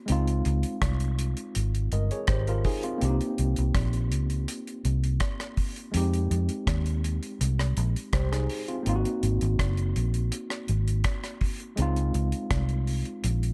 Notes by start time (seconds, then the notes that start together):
0.06 C#2 G#3 C4, closed hi-hat
0.10 D#4 F4
0.28 closed hi-hat
0.45 C#2, closed hi-hat
0.63 closed hi-hat
0.82 C2, kick, cross-stick, closed hi-hat
1.00 closed hi-hat
1.19 closed hi-hat
1.37 closed hi-hat
1.55 G#1, closed hi-hat
1.75 closed hi-hat
1.92 G1 A#4 D#5, closed hi-hat
2.11 G#4 C#5, closed hi-hat
2.27 G#1 G4 C5, kick, cross-stick, closed hi-hat
2.47 F4 A#4, closed hi-hat
2.65 D#4 G#4, kick, open hi-hat
2.83 C4 F4, closed hi-hat
2.98 A#3 C4, closed hi-hat
3.02 C2 D4 G4
3.09 D#4
3.21 closed hi-hat
3.38 C2, closed hi-hat
3.56 C2, closed hi-hat
3.75 A#1, kick, cross-stick, closed hi-hat
3.93 closed hi-hat
4.12 C#2, closed hi-hat
4.30 closed hi-hat
4.48 closed hi-hat
4.67 closed hi-hat
4.85 C2, closed hi-hat
5.04 closed hi-hat
5.20 kick, cross-stick, closed hi-hat
5.40 cross-stick, closed hi-hat
5.57 kick, open hi-hat
5.76 closed hi-hat
5.92 F2 G#3 C4, closed hi-hat
5.96 D#4 G4
6.14 closed hi-hat
6.31 F2, closed hi-hat
6.49 closed hi-hat
6.67 D#2, kick, cross-stick, closed hi-hat
6.86 closed hi-hat
7.04 closed hi-hat
7.23 closed hi-hat
7.41 C2, closed hi-hat
7.59 cross-stick, closed hi-hat
7.77 A#1, closed hi-hat
7.96 closed hi-hat
8.13 C2 G4 C5, kick, cross-stick, closed hi-hat
8.32 D#4 G#4, cross-stick, closed hi-hat
8.49 open hi-hat
8.68 C4 F4, closed hi-hat
8.83 G#1 A#3 C4, closed hi-hat
8.87 D#4 F4
8.96 F#4
9.05 closed hi-hat
9.23 G#1, closed hi-hat
9.41 G#1, closed hi-hat
9.59 F#1, kick, cross-stick, closed hi-hat
9.77 closed hi-hat
9.96 A#1, closed hi-hat
10.14 closed hi-hat
10.32 closed hi-hat
10.50 cross-stick, closed hi-hat
10.68 G#1, closed hi-hat
10.88 closed hi-hat
11.04 kick, cross-stick, closed hi-hat
11.24 cross-stick, closed hi-hat
11.41 kick, open hi-hat
11.60 closed hi-hat
11.76 C#2 G#3 C4 D#4, closed hi-hat
11.82 F4
11.96 closed hi-hat
12.14 C#2, closed hi-hat
12.32 closed hi-hat
12.51 C2, kick, cross-stick, closed hi-hat
12.69 closed hi-hat
12.87 open hi-hat
13.05 closed hi-hat
13.24 A#1, closed hi-hat
13.43 closed hi-hat